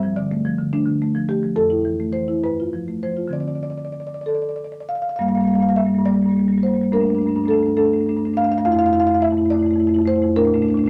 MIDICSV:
0, 0, Header, 1, 2, 480
1, 0, Start_track
1, 0, Tempo, 566038
1, 1310, Time_signature, 6, 3, 24, 8
1, 2291, Tempo, 621762
1, 4211, Tempo, 584226
1, 4691, Tempo, 576369
1, 7091, Tempo, 564440
1, 8999, End_track
2, 0, Start_track
2, 0, Title_t, "Marimba"
2, 0, Program_c, 0, 12
2, 0, Note_on_c, 0, 43, 62
2, 0, Note_on_c, 0, 76, 80
2, 27, Note_on_c, 0, 53, 46
2, 131, Note_off_c, 0, 76, 0
2, 139, Note_on_c, 0, 50, 47
2, 139, Note_on_c, 0, 74, 59
2, 207, Note_off_c, 0, 53, 0
2, 267, Note_on_c, 0, 57, 54
2, 322, Note_off_c, 0, 50, 0
2, 382, Note_on_c, 0, 53, 49
2, 445, Note_off_c, 0, 57, 0
2, 499, Note_on_c, 0, 50, 47
2, 561, Note_off_c, 0, 53, 0
2, 586, Note_off_c, 0, 74, 0
2, 619, Note_on_c, 0, 62, 67
2, 620, Note_on_c, 0, 57, 48
2, 679, Note_off_c, 0, 50, 0
2, 725, Note_on_c, 0, 50, 44
2, 798, Note_off_c, 0, 57, 0
2, 863, Note_on_c, 0, 57, 47
2, 909, Note_off_c, 0, 50, 0
2, 977, Note_on_c, 0, 53, 44
2, 1038, Note_off_c, 0, 57, 0
2, 1062, Note_off_c, 0, 62, 0
2, 1092, Note_on_c, 0, 57, 44
2, 1092, Note_on_c, 0, 67, 64
2, 1155, Note_off_c, 0, 53, 0
2, 1211, Note_on_c, 0, 53, 43
2, 1273, Note_off_c, 0, 57, 0
2, 1291, Note_off_c, 0, 43, 0
2, 1312, Note_off_c, 0, 67, 0
2, 1321, Note_off_c, 0, 53, 0
2, 1322, Note_on_c, 0, 41, 59
2, 1324, Note_on_c, 0, 69, 69
2, 1443, Note_on_c, 0, 64, 41
2, 1569, Note_on_c, 0, 52, 41
2, 1631, Note_off_c, 0, 64, 0
2, 1694, Note_on_c, 0, 57, 45
2, 1755, Note_off_c, 0, 52, 0
2, 1783, Note_off_c, 0, 69, 0
2, 1803, Note_on_c, 0, 52, 41
2, 1803, Note_on_c, 0, 72, 60
2, 1878, Note_off_c, 0, 57, 0
2, 1935, Note_on_c, 0, 64, 43
2, 1994, Note_off_c, 0, 52, 0
2, 2024, Note_off_c, 0, 41, 0
2, 2035, Note_off_c, 0, 72, 0
2, 2049, Note_off_c, 0, 64, 0
2, 2065, Note_on_c, 0, 43, 49
2, 2066, Note_on_c, 0, 71, 61
2, 2204, Note_on_c, 0, 65, 39
2, 2314, Note_on_c, 0, 53, 40
2, 2378, Note_off_c, 0, 65, 0
2, 2430, Note_on_c, 0, 57, 37
2, 2488, Note_off_c, 0, 53, 0
2, 2517, Note_off_c, 0, 71, 0
2, 2544, Note_on_c, 0, 72, 53
2, 2549, Note_on_c, 0, 53, 37
2, 2606, Note_off_c, 0, 57, 0
2, 2650, Note_on_c, 0, 65, 36
2, 2726, Note_off_c, 0, 53, 0
2, 2734, Note_on_c, 0, 50, 44
2, 2747, Note_on_c, 0, 53, 34
2, 2753, Note_off_c, 0, 43, 0
2, 2759, Note_on_c, 0, 60, 33
2, 2763, Note_off_c, 0, 72, 0
2, 2766, Note_off_c, 0, 65, 0
2, 2775, Note_on_c, 0, 74, 54
2, 2832, Note_off_c, 0, 74, 0
2, 2832, Note_on_c, 0, 74, 42
2, 2889, Note_off_c, 0, 74, 0
2, 2889, Note_on_c, 0, 74, 49
2, 2948, Note_off_c, 0, 74, 0
2, 2948, Note_on_c, 0, 74, 41
2, 3006, Note_off_c, 0, 74, 0
2, 3006, Note_on_c, 0, 74, 48
2, 3062, Note_off_c, 0, 74, 0
2, 3062, Note_on_c, 0, 74, 44
2, 3120, Note_off_c, 0, 74, 0
2, 3120, Note_on_c, 0, 74, 45
2, 3175, Note_off_c, 0, 74, 0
2, 3175, Note_on_c, 0, 74, 46
2, 3234, Note_off_c, 0, 74, 0
2, 3234, Note_on_c, 0, 74, 45
2, 3294, Note_off_c, 0, 74, 0
2, 3294, Note_on_c, 0, 74, 42
2, 3345, Note_off_c, 0, 74, 0
2, 3345, Note_on_c, 0, 74, 48
2, 3403, Note_off_c, 0, 74, 0
2, 3403, Note_on_c, 0, 74, 46
2, 3457, Note_off_c, 0, 74, 0
2, 3457, Note_on_c, 0, 74, 47
2, 3495, Note_on_c, 0, 69, 50
2, 3512, Note_off_c, 0, 74, 0
2, 3512, Note_on_c, 0, 74, 44
2, 3561, Note_off_c, 0, 74, 0
2, 3561, Note_on_c, 0, 74, 49
2, 3618, Note_off_c, 0, 74, 0
2, 3618, Note_on_c, 0, 74, 44
2, 3670, Note_off_c, 0, 74, 0
2, 3670, Note_on_c, 0, 74, 46
2, 3726, Note_off_c, 0, 74, 0
2, 3726, Note_on_c, 0, 74, 45
2, 3790, Note_off_c, 0, 74, 0
2, 3790, Note_on_c, 0, 74, 44
2, 3849, Note_off_c, 0, 74, 0
2, 3849, Note_on_c, 0, 74, 42
2, 3914, Note_off_c, 0, 74, 0
2, 3914, Note_on_c, 0, 74, 45
2, 3951, Note_off_c, 0, 74, 0
2, 3963, Note_off_c, 0, 69, 0
2, 3978, Note_on_c, 0, 77, 59
2, 4029, Note_off_c, 0, 77, 0
2, 4029, Note_on_c, 0, 77, 49
2, 4081, Note_off_c, 0, 77, 0
2, 4081, Note_on_c, 0, 77, 48
2, 4137, Note_off_c, 0, 77, 0
2, 4137, Note_on_c, 0, 77, 49
2, 4167, Note_off_c, 0, 50, 0
2, 4173, Note_off_c, 0, 53, 0
2, 4179, Note_off_c, 0, 60, 0
2, 4189, Note_off_c, 0, 77, 0
2, 4189, Note_on_c, 0, 77, 51
2, 4211, Note_on_c, 0, 43, 55
2, 4212, Note_on_c, 0, 58, 43
2, 4213, Note_on_c, 0, 55, 43
2, 4236, Note_off_c, 0, 77, 0
2, 4236, Note_on_c, 0, 77, 46
2, 4271, Note_off_c, 0, 58, 0
2, 4271, Note_on_c, 0, 58, 33
2, 4287, Note_off_c, 0, 55, 0
2, 4287, Note_on_c, 0, 55, 35
2, 4289, Note_off_c, 0, 77, 0
2, 4289, Note_on_c, 0, 77, 52
2, 4297, Note_off_c, 0, 43, 0
2, 4297, Note_on_c, 0, 43, 44
2, 4341, Note_off_c, 0, 58, 0
2, 4341, Note_on_c, 0, 58, 37
2, 4344, Note_off_c, 0, 77, 0
2, 4344, Note_on_c, 0, 77, 45
2, 4363, Note_off_c, 0, 55, 0
2, 4363, Note_on_c, 0, 55, 39
2, 4372, Note_off_c, 0, 43, 0
2, 4372, Note_on_c, 0, 43, 46
2, 4391, Note_off_c, 0, 77, 0
2, 4391, Note_on_c, 0, 77, 48
2, 4415, Note_off_c, 0, 58, 0
2, 4415, Note_on_c, 0, 58, 34
2, 4429, Note_off_c, 0, 55, 0
2, 4429, Note_on_c, 0, 55, 34
2, 4445, Note_off_c, 0, 77, 0
2, 4445, Note_on_c, 0, 77, 45
2, 4455, Note_off_c, 0, 43, 0
2, 4455, Note_on_c, 0, 43, 44
2, 4481, Note_off_c, 0, 58, 0
2, 4481, Note_on_c, 0, 58, 37
2, 4499, Note_off_c, 0, 55, 0
2, 4499, Note_on_c, 0, 55, 39
2, 4510, Note_off_c, 0, 77, 0
2, 4510, Note_on_c, 0, 77, 50
2, 4536, Note_off_c, 0, 43, 0
2, 4536, Note_on_c, 0, 43, 50
2, 4551, Note_off_c, 0, 58, 0
2, 4551, Note_on_c, 0, 58, 33
2, 4568, Note_off_c, 0, 55, 0
2, 4568, Note_on_c, 0, 55, 34
2, 4569, Note_off_c, 0, 77, 0
2, 4569, Note_on_c, 0, 77, 49
2, 4615, Note_off_c, 0, 43, 0
2, 4615, Note_on_c, 0, 43, 46
2, 4620, Note_off_c, 0, 77, 0
2, 4620, Note_on_c, 0, 77, 53
2, 4624, Note_off_c, 0, 58, 0
2, 4624, Note_on_c, 0, 58, 35
2, 4634, Note_off_c, 0, 55, 0
2, 4634, Note_on_c, 0, 55, 36
2, 4663, Note_off_c, 0, 77, 0
2, 4683, Note_on_c, 0, 76, 68
2, 4692, Note_off_c, 0, 58, 0
2, 4692, Note_on_c, 0, 58, 36
2, 4696, Note_off_c, 0, 55, 0
2, 4696, Note_on_c, 0, 55, 33
2, 4699, Note_off_c, 0, 43, 0
2, 4699, Note_on_c, 0, 43, 46
2, 4756, Note_off_c, 0, 58, 0
2, 4756, Note_on_c, 0, 58, 35
2, 4766, Note_off_c, 0, 55, 0
2, 4766, Note_on_c, 0, 55, 36
2, 4785, Note_off_c, 0, 43, 0
2, 4785, Note_on_c, 0, 43, 46
2, 4831, Note_off_c, 0, 58, 0
2, 4831, Note_on_c, 0, 58, 34
2, 4834, Note_off_c, 0, 55, 0
2, 4834, Note_on_c, 0, 55, 36
2, 4865, Note_off_c, 0, 43, 0
2, 4865, Note_on_c, 0, 43, 49
2, 4909, Note_off_c, 0, 43, 0
2, 4910, Note_off_c, 0, 58, 0
2, 4911, Note_off_c, 0, 55, 0
2, 4918, Note_off_c, 0, 76, 0
2, 4926, Note_on_c, 0, 58, 41
2, 4926, Note_on_c, 0, 74, 70
2, 4928, Note_on_c, 0, 43, 46
2, 4930, Note_on_c, 0, 55, 44
2, 4991, Note_off_c, 0, 58, 0
2, 4991, Note_on_c, 0, 58, 33
2, 5000, Note_off_c, 0, 55, 0
2, 5000, Note_on_c, 0, 55, 35
2, 5012, Note_off_c, 0, 43, 0
2, 5012, Note_on_c, 0, 43, 37
2, 5060, Note_off_c, 0, 58, 0
2, 5060, Note_on_c, 0, 58, 33
2, 5068, Note_off_c, 0, 55, 0
2, 5068, Note_on_c, 0, 55, 36
2, 5098, Note_off_c, 0, 43, 0
2, 5098, Note_on_c, 0, 43, 42
2, 5122, Note_off_c, 0, 58, 0
2, 5122, Note_on_c, 0, 58, 31
2, 5139, Note_off_c, 0, 55, 0
2, 5139, Note_on_c, 0, 55, 35
2, 5182, Note_off_c, 0, 43, 0
2, 5182, Note_on_c, 0, 43, 37
2, 5186, Note_off_c, 0, 58, 0
2, 5186, Note_on_c, 0, 58, 36
2, 5209, Note_off_c, 0, 55, 0
2, 5209, Note_on_c, 0, 55, 39
2, 5245, Note_off_c, 0, 58, 0
2, 5245, Note_on_c, 0, 58, 33
2, 5281, Note_off_c, 0, 43, 0
2, 5281, Note_off_c, 0, 55, 0
2, 5281, Note_on_c, 0, 43, 40
2, 5281, Note_on_c, 0, 55, 37
2, 5319, Note_off_c, 0, 58, 0
2, 5319, Note_on_c, 0, 58, 37
2, 5359, Note_off_c, 0, 43, 0
2, 5359, Note_on_c, 0, 43, 36
2, 5362, Note_off_c, 0, 55, 0
2, 5362, Note_on_c, 0, 55, 36
2, 5382, Note_off_c, 0, 58, 0
2, 5382, Note_on_c, 0, 58, 32
2, 5389, Note_off_c, 0, 74, 0
2, 5405, Note_on_c, 0, 72, 62
2, 5434, Note_off_c, 0, 55, 0
2, 5434, Note_on_c, 0, 55, 34
2, 5447, Note_off_c, 0, 43, 0
2, 5447, Note_on_c, 0, 43, 38
2, 5448, Note_off_c, 0, 58, 0
2, 5448, Note_on_c, 0, 58, 37
2, 5496, Note_off_c, 0, 55, 0
2, 5496, Note_on_c, 0, 55, 37
2, 5505, Note_off_c, 0, 58, 0
2, 5505, Note_on_c, 0, 58, 32
2, 5525, Note_off_c, 0, 43, 0
2, 5525, Note_on_c, 0, 43, 39
2, 5556, Note_off_c, 0, 55, 0
2, 5556, Note_on_c, 0, 55, 36
2, 5575, Note_off_c, 0, 58, 0
2, 5575, Note_on_c, 0, 58, 36
2, 5622, Note_off_c, 0, 58, 0
2, 5623, Note_off_c, 0, 43, 0
2, 5624, Note_off_c, 0, 55, 0
2, 5634, Note_off_c, 0, 72, 0
2, 5648, Note_on_c, 0, 57, 44
2, 5649, Note_on_c, 0, 43, 54
2, 5655, Note_on_c, 0, 62, 47
2, 5656, Note_on_c, 0, 70, 67
2, 5713, Note_off_c, 0, 62, 0
2, 5713, Note_on_c, 0, 62, 36
2, 5722, Note_off_c, 0, 57, 0
2, 5722, Note_on_c, 0, 57, 37
2, 5744, Note_off_c, 0, 43, 0
2, 5744, Note_on_c, 0, 43, 44
2, 5773, Note_off_c, 0, 62, 0
2, 5773, Note_on_c, 0, 62, 38
2, 5800, Note_off_c, 0, 57, 0
2, 5800, Note_on_c, 0, 57, 36
2, 5836, Note_off_c, 0, 62, 0
2, 5836, Note_on_c, 0, 62, 39
2, 5839, Note_off_c, 0, 43, 0
2, 5839, Note_on_c, 0, 43, 45
2, 5868, Note_off_c, 0, 57, 0
2, 5868, Note_on_c, 0, 57, 34
2, 5893, Note_off_c, 0, 62, 0
2, 5893, Note_on_c, 0, 62, 39
2, 5926, Note_off_c, 0, 43, 0
2, 5926, Note_on_c, 0, 43, 44
2, 5938, Note_off_c, 0, 57, 0
2, 5938, Note_on_c, 0, 57, 37
2, 5951, Note_off_c, 0, 62, 0
2, 5951, Note_on_c, 0, 62, 36
2, 6011, Note_off_c, 0, 57, 0
2, 6011, Note_off_c, 0, 62, 0
2, 6011, Note_on_c, 0, 57, 34
2, 6011, Note_on_c, 0, 62, 39
2, 6018, Note_off_c, 0, 43, 0
2, 6018, Note_on_c, 0, 43, 47
2, 6078, Note_off_c, 0, 62, 0
2, 6078, Note_on_c, 0, 62, 39
2, 6091, Note_off_c, 0, 57, 0
2, 6091, Note_on_c, 0, 57, 36
2, 6102, Note_off_c, 0, 70, 0
2, 6107, Note_off_c, 0, 43, 0
2, 6107, Note_on_c, 0, 43, 42
2, 6114, Note_on_c, 0, 69, 67
2, 6133, Note_off_c, 0, 62, 0
2, 6133, Note_on_c, 0, 62, 42
2, 6162, Note_off_c, 0, 57, 0
2, 6162, Note_on_c, 0, 57, 34
2, 6200, Note_off_c, 0, 62, 0
2, 6200, Note_on_c, 0, 62, 35
2, 6202, Note_off_c, 0, 43, 0
2, 6202, Note_on_c, 0, 43, 45
2, 6236, Note_off_c, 0, 57, 0
2, 6236, Note_on_c, 0, 57, 38
2, 6262, Note_off_c, 0, 62, 0
2, 6262, Note_on_c, 0, 62, 41
2, 6269, Note_off_c, 0, 43, 0
2, 6269, Note_on_c, 0, 43, 45
2, 6338, Note_off_c, 0, 57, 0
2, 6339, Note_off_c, 0, 43, 0
2, 6341, Note_off_c, 0, 62, 0
2, 6343, Note_off_c, 0, 69, 0
2, 6353, Note_on_c, 0, 43, 54
2, 6353, Note_on_c, 0, 57, 41
2, 6353, Note_on_c, 0, 69, 67
2, 6355, Note_on_c, 0, 62, 45
2, 6420, Note_off_c, 0, 62, 0
2, 6420, Note_on_c, 0, 62, 38
2, 6426, Note_off_c, 0, 57, 0
2, 6426, Note_on_c, 0, 57, 34
2, 6431, Note_off_c, 0, 43, 0
2, 6431, Note_on_c, 0, 43, 46
2, 6489, Note_off_c, 0, 62, 0
2, 6489, Note_on_c, 0, 62, 38
2, 6491, Note_off_c, 0, 57, 0
2, 6491, Note_on_c, 0, 57, 34
2, 6518, Note_off_c, 0, 43, 0
2, 6518, Note_on_c, 0, 43, 48
2, 6551, Note_off_c, 0, 57, 0
2, 6551, Note_on_c, 0, 57, 32
2, 6552, Note_off_c, 0, 62, 0
2, 6552, Note_on_c, 0, 62, 35
2, 6603, Note_off_c, 0, 43, 0
2, 6603, Note_on_c, 0, 43, 44
2, 6620, Note_off_c, 0, 57, 0
2, 6620, Note_on_c, 0, 57, 35
2, 6623, Note_off_c, 0, 62, 0
2, 6623, Note_on_c, 0, 62, 39
2, 6681, Note_off_c, 0, 43, 0
2, 6681, Note_on_c, 0, 43, 46
2, 6689, Note_off_c, 0, 57, 0
2, 6689, Note_off_c, 0, 62, 0
2, 6689, Note_on_c, 0, 57, 32
2, 6689, Note_on_c, 0, 62, 37
2, 6754, Note_off_c, 0, 57, 0
2, 6754, Note_on_c, 0, 57, 37
2, 6757, Note_off_c, 0, 62, 0
2, 6757, Note_on_c, 0, 62, 41
2, 6770, Note_off_c, 0, 43, 0
2, 6770, Note_on_c, 0, 43, 44
2, 6823, Note_off_c, 0, 57, 0
2, 6823, Note_on_c, 0, 57, 32
2, 6828, Note_off_c, 0, 62, 0
2, 6828, Note_on_c, 0, 62, 37
2, 6831, Note_off_c, 0, 69, 0
2, 6854, Note_on_c, 0, 77, 84
2, 6855, Note_off_c, 0, 43, 0
2, 6855, Note_on_c, 0, 43, 47
2, 6891, Note_off_c, 0, 57, 0
2, 6891, Note_on_c, 0, 57, 38
2, 6895, Note_off_c, 0, 62, 0
2, 6895, Note_on_c, 0, 62, 38
2, 6915, Note_off_c, 0, 77, 0
2, 6915, Note_on_c, 0, 77, 71
2, 6939, Note_off_c, 0, 43, 0
2, 6939, Note_on_c, 0, 43, 43
2, 6951, Note_off_c, 0, 57, 0
2, 6951, Note_on_c, 0, 57, 34
2, 6967, Note_off_c, 0, 62, 0
2, 6967, Note_on_c, 0, 62, 35
2, 6976, Note_off_c, 0, 77, 0
2, 6976, Note_on_c, 0, 77, 71
2, 7020, Note_off_c, 0, 43, 0
2, 7020, Note_on_c, 0, 43, 47
2, 7025, Note_off_c, 0, 57, 0
2, 7025, Note_on_c, 0, 57, 37
2, 7028, Note_off_c, 0, 77, 0
2, 7028, Note_on_c, 0, 77, 71
2, 7067, Note_off_c, 0, 43, 0
2, 7068, Note_off_c, 0, 57, 0
2, 7069, Note_off_c, 0, 62, 0
2, 7088, Note_off_c, 0, 77, 0
2, 7088, Note_on_c, 0, 41, 63
2, 7088, Note_on_c, 0, 77, 74
2, 7092, Note_on_c, 0, 57, 47
2, 7092, Note_on_c, 0, 64, 46
2, 7146, Note_off_c, 0, 77, 0
2, 7146, Note_on_c, 0, 77, 69
2, 7155, Note_off_c, 0, 64, 0
2, 7155, Note_on_c, 0, 64, 36
2, 7169, Note_off_c, 0, 57, 0
2, 7169, Note_on_c, 0, 57, 38
2, 7186, Note_off_c, 0, 41, 0
2, 7186, Note_on_c, 0, 41, 53
2, 7203, Note_off_c, 0, 77, 0
2, 7203, Note_on_c, 0, 77, 74
2, 7213, Note_off_c, 0, 64, 0
2, 7213, Note_on_c, 0, 64, 39
2, 7249, Note_off_c, 0, 57, 0
2, 7249, Note_on_c, 0, 57, 42
2, 7266, Note_off_c, 0, 77, 0
2, 7266, Note_on_c, 0, 77, 68
2, 7281, Note_off_c, 0, 64, 0
2, 7281, Note_on_c, 0, 64, 35
2, 7282, Note_off_c, 0, 41, 0
2, 7282, Note_on_c, 0, 41, 52
2, 7324, Note_off_c, 0, 77, 0
2, 7324, Note_on_c, 0, 77, 70
2, 7332, Note_off_c, 0, 57, 0
2, 7332, Note_on_c, 0, 57, 37
2, 7344, Note_off_c, 0, 64, 0
2, 7344, Note_on_c, 0, 64, 40
2, 7376, Note_off_c, 0, 41, 0
2, 7376, Note_on_c, 0, 41, 52
2, 7382, Note_off_c, 0, 77, 0
2, 7382, Note_on_c, 0, 77, 70
2, 7399, Note_off_c, 0, 64, 0
2, 7399, Note_on_c, 0, 64, 36
2, 7401, Note_off_c, 0, 57, 0
2, 7401, Note_on_c, 0, 57, 41
2, 7443, Note_off_c, 0, 77, 0
2, 7443, Note_on_c, 0, 77, 70
2, 7454, Note_off_c, 0, 64, 0
2, 7454, Note_on_c, 0, 64, 37
2, 7463, Note_off_c, 0, 41, 0
2, 7463, Note_on_c, 0, 41, 52
2, 7480, Note_off_c, 0, 57, 0
2, 7480, Note_on_c, 0, 57, 37
2, 7508, Note_off_c, 0, 77, 0
2, 7508, Note_on_c, 0, 77, 64
2, 7517, Note_off_c, 0, 64, 0
2, 7517, Note_on_c, 0, 64, 35
2, 7544, Note_off_c, 0, 77, 0
2, 7556, Note_off_c, 0, 41, 0
2, 7556, Note_on_c, 0, 41, 49
2, 7560, Note_off_c, 0, 57, 0
2, 7560, Note_on_c, 0, 57, 40
2, 7573, Note_on_c, 0, 76, 81
2, 7577, Note_off_c, 0, 64, 0
2, 7577, Note_on_c, 0, 64, 41
2, 7626, Note_off_c, 0, 57, 0
2, 7626, Note_on_c, 0, 57, 36
2, 7644, Note_off_c, 0, 64, 0
2, 7644, Note_on_c, 0, 64, 36
2, 7661, Note_off_c, 0, 41, 0
2, 7661, Note_on_c, 0, 41, 55
2, 7701, Note_off_c, 0, 57, 0
2, 7701, Note_on_c, 0, 57, 40
2, 7704, Note_off_c, 0, 64, 0
2, 7704, Note_on_c, 0, 64, 41
2, 7740, Note_off_c, 0, 41, 0
2, 7740, Note_on_c, 0, 41, 47
2, 7768, Note_off_c, 0, 64, 0
2, 7768, Note_on_c, 0, 64, 39
2, 7772, Note_off_c, 0, 57, 0
2, 7772, Note_on_c, 0, 57, 40
2, 7803, Note_off_c, 0, 76, 0
2, 7813, Note_on_c, 0, 74, 78
2, 7827, Note_off_c, 0, 64, 0
2, 7827, Note_on_c, 0, 64, 39
2, 7839, Note_off_c, 0, 41, 0
2, 7839, Note_on_c, 0, 41, 54
2, 7846, Note_off_c, 0, 57, 0
2, 7846, Note_on_c, 0, 57, 40
2, 7890, Note_off_c, 0, 64, 0
2, 7890, Note_on_c, 0, 64, 38
2, 7914, Note_off_c, 0, 57, 0
2, 7914, Note_on_c, 0, 57, 36
2, 7935, Note_off_c, 0, 41, 0
2, 7935, Note_on_c, 0, 41, 48
2, 7947, Note_off_c, 0, 64, 0
2, 7947, Note_on_c, 0, 64, 37
2, 7985, Note_off_c, 0, 57, 0
2, 7985, Note_on_c, 0, 57, 42
2, 8010, Note_off_c, 0, 64, 0
2, 8010, Note_on_c, 0, 64, 38
2, 8028, Note_off_c, 0, 41, 0
2, 8028, Note_on_c, 0, 41, 52
2, 8063, Note_off_c, 0, 57, 0
2, 8063, Note_on_c, 0, 57, 37
2, 8065, Note_off_c, 0, 64, 0
2, 8065, Note_on_c, 0, 64, 41
2, 8126, Note_off_c, 0, 64, 0
2, 8126, Note_on_c, 0, 64, 37
2, 8129, Note_off_c, 0, 41, 0
2, 8129, Note_on_c, 0, 41, 48
2, 8139, Note_off_c, 0, 57, 0
2, 8139, Note_on_c, 0, 57, 39
2, 8187, Note_off_c, 0, 64, 0
2, 8187, Note_on_c, 0, 64, 42
2, 8206, Note_off_c, 0, 57, 0
2, 8206, Note_on_c, 0, 57, 39
2, 8229, Note_off_c, 0, 41, 0
2, 8229, Note_on_c, 0, 41, 54
2, 8250, Note_off_c, 0, 64, 0
2, 8250, Note_on_c, 0, 64, 35
2, 8272, Note_off_c, 0, 74, 0
2, 8282, Note_off_c, 0, 57, 0
2, 8282, Note_on_c, 0, 57, 43
2, 8299, Note_on_c, 0, 72, 76
2, 8313, Note_off_c, 0, 64, 0
2, 8313, Note_on_c, 0, 64, 39
2, 8341, Note_off_c, 0, 41, 0
2, 8341, Note_on_c, 0, 41, 48
2, 8352, Note_off_c, 0, 57, 0
2, 8352, Note_on_c, 0, 57, 38
2, 8370, Note_off_c, 0, 64, 0
2, 8370, Note_on_c, 0, 64, 36
2, 8422, Note_off_c, 0, 57, 0
2, 8422, Note_on_c, 0, 57, 41
2, 8427, Note_off_c, 0, 64, 0
2, 8427, Note_on_c, 0, 64, 39
2, 8434, Note_off_c, 0, 41, 0
2, 8434, Note_on_c, 0, 41, 52
2, 8493, Note_off_c, 0, 41, 0
2, 8495, Note_off_c, 0, 57, 0
2, 8495, Note_off_c, 0, 64, 0
2, 8524, Note_off_c, 0, 72, 0
2, 8541, Note_on_c, 0, 62, 57
2, 8544, Note_on_c, 0, 70, 81
2, 8545, Note_on_c, 0, 57, 55
2, 8548, Note_on_c, 0, 46, 61
2, 8613, Note_off_c, 0, 62, 0
2, 8613, Note_on_c, 0, 62, 43
2, 8619, Note_off_c, 0, 57, 0
2, 8619, Note_on_c, 0, 57, 45
2, 8633, Note_off_c, 0, 46, 0
2, 8633, Note_on_c, 0, 46, 48
2, 8691, Note_off_c, 0, 62, 0
2, 8691, Note_on_c, 0, 62, 52
2, 8694, Note_off_c, 0, 57, 0
2, 8694, Note_on_c, 0, 57, 49
2, 8709, Note_off_c, 0, 46, 0
2, 8709, Note_on_c, 0, 46, 55
2, 8761, Note_off_c, 0, 62, 0
2, 8761, Note_on_c, 0, 62, 47
2, 8764, Note_off_c, 0, 57, 0
2, 8764, Note_on_c, 0, 57, 43
2, 8791, Note_off_c, 0, 46, 0
2, 8791, Note_on_c, 0, 46, 46
2, 8819, Note_off_c, 0, 62, 0
2, 8819, Note_on_c, 0, 62, 49
2, 8834, Note_off_c, 0, 57, 0
2, 8834, Note_on_c, 0, 57, 47
2, 8868, Note_off_c, 0, 46, 0
2, 8868, Note_on_c, 0, 46, 51
2, 8892, Note_off_c, 0, 62, 0
2, 8892, Note_on_c, 0, 62, 47
2, 8907, Note_off_c, 0, 57, 0
2, 8907, Note_on_c, 0, 57, 44
2, 8944, Note_off_c, 0, 46, 0
2, 8944, Note_on_c, 0, 46, 51
2, 8967, Note_off_c, 0, 62, 0
2, 8967, Note_on_c, 0, 62, 49
2, 8999, Note_off_c, 0, 46, 0
2, 8999, Note_off_c, 0, 57, 0
2, 8999, Note_off_c, 0, 62, 0
2, 8999, Note_off_c, 0, 70, 0
2, 8999, End_track
0, 0, End_of_file